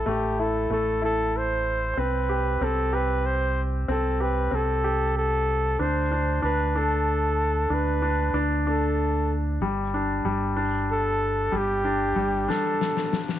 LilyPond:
<<
  \new Staff \with { instrumentName = "Flugelhorn" } { \time 6/8 \key c \major \tempo 4. = 63 g'8 a'8 a'8 a'8 c''4 | b'4 a'8 b'8 c''8 r8 | a'8 b'8 a'4 a'4 | c''4 b'8 a'4. |
b'4 r8 a'4 r8 | r2 a'4 | g'4. a'4 r8 | }
  \new Staff \with { instrumentName = "Grand piano" } { \time 6/8 \key c \major <a e'>8 e'8 a8 e'4. | c'8 g'8 c'8 g'4. | c'8 g'8 c'8 g'4. | d'8 d'8 d'8 d'4. |
d'8 d'8 d'8 d'4. | g8 d'8 g8 d'4. | g8 d'8 g8 d'4. | }
  \new Staff \with { instrumentName = "Fingered electric bass" } { \clef bass \time 6/8 \key c \major a,,4 a,,2 | c,4 c,2 | c,4 c,2 | d,4 d,2 |
d,4 d,2 | g,,4 g,,2 | g,,4 g,,8 r4. | }
  \new DrumStaff \with { instrumentName = "Drums" } \drummode { \time 6/8 r4. r4. | r4. r4. | r4. r4. | r4. r4. |
r4. r4. | r4. r4. | r4. sn8 sn16 sn16 sn16 sn16 | }
>>